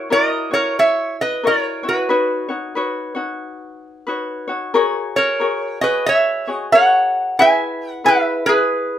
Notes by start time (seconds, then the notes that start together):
Already playing: F#4
0.10 E4 F#4 A#4 C#5 D#5
0.51 E4 F#4 C#5
0.55 A#4
0.79 C#5 E5
1.21 B4 D#5
1.44 E4 F#4 A#4 C#5
1.48 A#4
1.83 E4 F#4 C#5
1.89 F#4 B4
2.09 D#4 F#4 B4 C#5
2.49 D#4 F#4 C#5
2.75 D#4 F#4 B4 C#5
3.15 D#4 F#4 C#5
4.07 D#4 F#4 B4 C#5
4.48 D#4 F#4 C#5
4.74 F#4 G#4 A#4 C#5
5.16 A#4 C#5
5.40 F#4 G#4 A#4 C#5
5.81 F#4 G#4 B4 C#5 D#5
6.06 C#5 E5
6.47 F#4 G#4 C#5 D#5
6.72 F#4 G#4 A#4 C#5 F#5
7.39 E4 G#4 B4 E5 G#5
7.91 F#5
8.04 E4 G#4 B4 E5
8.46 E4 G#4 B4 E5